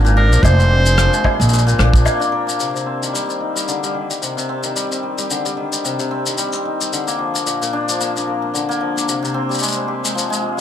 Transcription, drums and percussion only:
0.06 shaker
0.33 shaker
0.43 kick, low woodblock, shaker
0.60 shaker
0.86 shaker
0.98 cross-stick, shaker
1.14 shaker
1.24 kick, low woodblock
1.41 shaker
1.49 shaker
1.53 shaker
1.58 shaker
1.68 shaker
1.79 cross-stick
1.94 kick, shaker
2.06 low woodblock, shaker
2.22 shaker
2.49 shaker
2.60 shaker
2.76 shaker
3.03 shaker
3.15 shaker
3.30 shaker
3.57 shaker
3.68 shaker
3.84 shaker
4.11 shaker
4.23 shaker
4.38 shaker
4.63 shaker
4.76 shaker
4.92 shaker
5.18 shaker
5.31 shaker
5.46 shaker
5.73 shaker
5.85 shaker
5.99 shaker
6.26 shaker
6.38 shaker
6.53 shaker
6.81 shaker
6.93 shaker
7.08 shaker
7.35 shaker
7.47 shaker
7.62 shaker
7.89 shaker
8.01 shaker
8.17 shaker
8.55 shaker
8.71 shaker
8.98 shaker
9.09 shaker
9.25 shaker
9.51 shaker
9.54 shaker
9.59 shaker
9.63 shaker
9.68 shaker
9.72 shaker
10.05 shaker
10.18 shaker
10.33 shaker

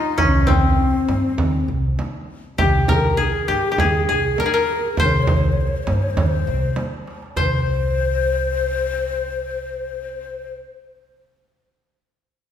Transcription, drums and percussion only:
0.18 frame drum, darbuka dum
0.48 frame drum, darbuka dum
0.81 darbuka ka
0.95 darbuka ka
1.09 frame drum
1.25 darbuka ka
1.38 frame drum, darbuka dum
1.70 darbuka ka
1.99 darbuka tek, frame drum
2.15 darbuka ka
2.29 darbuka ka
2.45 darbuka ka
2.59 frame drum, darbuka dum
2.88 frame drum, darbuka dum
3.20 darbuka ka
3.34 darbuka ka
3.50 darbuka tek
3.65 darbuka ka
3.78 frame drum, darbuka dum
4.38 darbuka tek, frame drum
4.55 darbuka ka
4.70 darbuka ka
4.84 darbuka ka
4.97 frame drum, darbuka dum
5.27 frame drum, darbuka dum
5.59 darbuka ka
5.73 darbuka ka
5.87 darbuka tek, frame drum
6.04 darbuka ka
6.17 frame drum, darbuka dum
6.34 darbuka ka
6.49 darbuka ka
6.76 darbuka tek, frame drum
6.94 darbuka ka
7.07 darbuka tek
7.22 darbuka ka
7.36 frame drum, darbuka dum

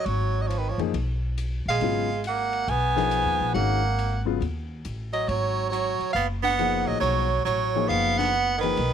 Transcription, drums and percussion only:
0.06 ride
0.50 hi-hat pedal, ride
0.79 ride
0.94 ride
1.38 hi-hat pedal, ride
1.81 ride
2.24 hi-hat pedal, ride
2.53 ride
2.68 ride
2.97 snare
3.11 hi-hat pedal, ride
3.55 ride
3.99 hi-hat pedal, ride
4.42 ride
4.85 hi-hat pedal, ride
5.13 ride
5.29 ride
5.73 hi-hat pedal, ride
6.01 ride
6.16 ride
6.44 snare
6.59 hi-hat pedal, ride
7.03 ride
7.46 hi-hat pedal, ride
7.90 ride
8.19 snare, ride
8.33 hi-hat pedal
8.63 ride
8.77 ride

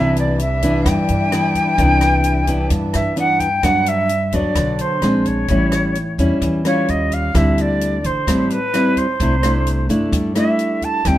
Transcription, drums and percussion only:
0.16 closed hi-hat
0.39 closed hi-hat
0.62 kick, closed hi-hat
0.86 kick, cross-stick, closed hi-hat
1.09 closed hi-hat
1.32 cross-stick, closed hi-hat
1.55 kick, closed hi-hat
1.78 kick, closed hi-hat
2.01 cross-stick, closed hi-hat
2.24 closed hi-hat
2.47 kick, closed hi-hat
2.70 kick, closed hi-hat
2.94 cross-stick, closed hi-hat
3.17 closed hi-hat
3.40 kick, closed hi-hat
3.63 kick, cross-stick, closed hi-hat
3.86 closed hi-hat
4.09 closed hi-hat
4.32 kick, closed hi-hat
4.55 kick, cross-stick, closed hi-hat
4.79 closed hi-hat
5.02 cross-stick, closed hi-hat
5.25 kick, closed hi-hat
5.48 kick, closed hi-hat
5.72 cross-stick, closed hi-hat
5.95 closed hi-hat
6.18 kick, closed hi-hat
6.42 kick, closed hi-hat
6.65 cross-stick, closed hi-hat
6.88 closed hi-hat
7.11 kick, closed hi-hat
7.35 kick, cross-stick, closed hi-hat
7.58 closed hi-hat
7.81 closed hi-hat
8.04 kick, closed hi-hat
8.27 kick, cross-stick, closed hi-hat
8.50 closed hi-hat
8.74 cross-stick, closed hi-hat
8.97 kick, closed hi-hat
9.20 kick, closed hi-hat
9.43 cross-stick, closed hi-hat
9.67 closed hi-hat
9.89 kick, closed hi-hat
10.13 kick, closed hi-hat
10.35 cross-stick, closed hi-hat
10.59 closed hi-hat
10.82 kick, closed hi-hat
11.05 kick, cross-stick, closed hi-hat

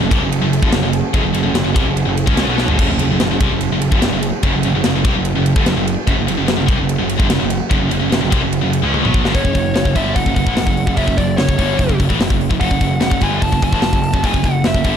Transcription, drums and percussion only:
0.11 kick, ride
0.32 ride
0.53 ride
0.63 kick
0.72 snare, ride
0.93 ride
1.14 kick, ride
1.34 ride
1.55 snare, ride
1.76 kick, ride
1.97 ride
2.17 ride
2.27 kick
2.37 snare, ride
2.58 snare
2.68 floor tom
2.79 kick, crash
2.99 ride
3.20 snare, ride
3.40 kick, ride
3.61 ride
3.82 ride
3.92 kick
4.02 snare, ride
4.23 ride
4.43 kick, ride
4.63 ride
4.84 snare, ride
5.05 kick, ride
5.25 ride
5.46 ride
5.56 kick
5.66 snare, ride
5.87 ride
6.07 kick, ride
6.28 ride
6.48 snare, ride
6.69 kick, ride
6.89 ride
7.09 ride
7.20 kick
7.30 snare, ride
7.50 ride
7.71 kick, ride
7.91 ride
8.12 snare, ride
8.32 kick, ride
8.53 ride
8.73 ride
8.94 high tom
9.05 mid tom
9.14 kick
9.25 snare
9.35 kick, open hi-hat
9.45 kick
9.55 kick, open hi-hat
9.76 snare, open hi-hat
9.85 kick
9.96 kick, open hi-hat
10.16 kick, open hi-hat
10.26 kick
10.36 kick, open hi-hat
10.47 kick
10.57 snare, open hi-hat
10.67 kick
10.77 open hi-hat
10.87 kick
10.97 kick, open hi-hat
11.08 kick
11.18 kick, open hi-hat
11.38 snare, open hi-hat
11.49 kick
11.59 kick, open hi-hat
11.79 kick, open hi-hat
11.89 kick
12.00 kick, open hi-hat
12.10 kick
12.21 snare, open hi-hat
12.30 kick
12.41 open hi-hat
12.51 kick
12.61 kick, open hi-hat
12.71 kick
12.81 kick, open hi-hat
13.01 snare, open hi-hat
13.11 kick
13.21 kick, open hi-hat
13.42 kick, open hi-hat
13.52 kick
13.62 kick, open hi-hat
13.73 kick
13.82 snare, open hi-hat
13.93 kick
14.04 open hi-hat
14.14 kick
14.24 kick, open hi-hat
14.34 kick
14.44 kick, open hi-hat
14.64 snare, open hi-hat
14.74 kick
14.84 kick, open hi-hat

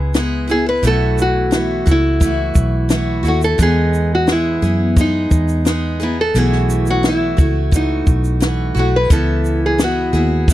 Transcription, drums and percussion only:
0.14 snare, shaker
0.49 shaker
0.83 shaker
1.18 shaker
1.52 snare, shaker
1.86 kick, shaker
2.21 kick, shaker
2.55 kick, shaker
2.90 snare, shaker
3.25 shaker
3.42 shaker
3.59 kick, shaker
3.94 shaker
4.28 snare, shaker
4.63 shaker
4.97 kick, shaker
5.31 kick, shaker
5.48 shaker
5.66 snare, shaker
6.00 shaker
6.35 shaker
6.52 snare
6.70 shaker
6.86 shaker
7.04 snare, shaker
7.38 kick, shaker
7.72 kick, shaker
8.07 kick, shaker
8.24 shaker
8.42 snare, shaker
8.77 shaker
9.10 kick, shaker
9.45 shaker
9.79 snare, shaker
10.14 shaker
10.48 kick, shaker

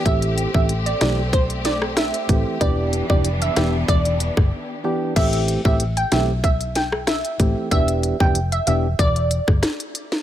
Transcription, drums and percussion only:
0.06 kick, closed hi-hat
0.22 closed hi-hat
0.38 closed hi-hat
0.54 kick
0.69 closed hi-hat
0.86 closed hi-hat
1.01 cross-stick, snare, closed hi-hat
1.33 kick, closed hi-hat
1.50 closed hi-hat
1.65 snare, closed hi-hat
1.82 cross-stick
1.97 cross-stick, snare, closed hi-hat
2.14 closed hi-hat
2.29 kick, closed hi-hat
2.61 kick, closed hi-hat
2.93 closed hi-hat
3.10 kick
3.25 closed hi-hat
3.42 closed hi-hat
3.56 cross-stick, snare, closed hi-hat
3.88 kick, closed hi-hat
4.05 closed hi-hat
4.20 closed hi-hat
4.37 kick, cross-stick
5.16 kick, closed hi-hat, crash
5.33 closed hi-hat
5.48 closed hi-hat
5.65 kick
5.80 closed hi-hat
5.97 closed hi-hat
6.12 cross-stick, snare, closed hi-hat
6.44 kick, closed hi-hat
6.61 closed hi-hat
6.75 snare, closed hi-hat
6.92 cross-stick
7.07 cross-stick, snare, closed hi-hat
7.25 closed hi-hat
7.40 kick, closed hi-hat
7.72 kick, closed hi-hat
7.88 closed hi-hat
8.03 closed hi-hat
8.20 kick
8.35 closed hi-hat
8.52 closed hi-hat
8.67 closed hi-hat
8.99 kick, closed hi-hat
9.16 closed hi-hat
9.31 closed hi-hat
9.48 kick, cross-stick
9.63 cross-stick, snare, closed hi-hat
9.80 closed hi-hat
9.95 closed hi-hat
10.12 snare

